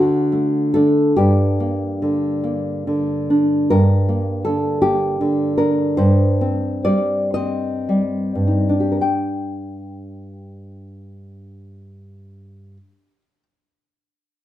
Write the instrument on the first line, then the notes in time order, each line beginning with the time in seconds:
nylon-string guitar
Already playing: D3 F#4
0.32 A3
0.74 A3 D4 A4
1.17 G2 G4
1.60 A#3
2.02 D3
2.44 A#3
2.87 D3
3.30 D4
3.70 G2 A#4
4.09 A#3
4.45 D3 A4
4.82 A#3 G4
5.21 D3
5.58 D4 A#4
5.97 G2 C5
6.41 C4
6.85 G3 D5
7.34 C4 D#5
7.89 G3
8.35 G2
8.47 D#4
8.69 D4
8.80 G4
8.92 A#4
9.01 G5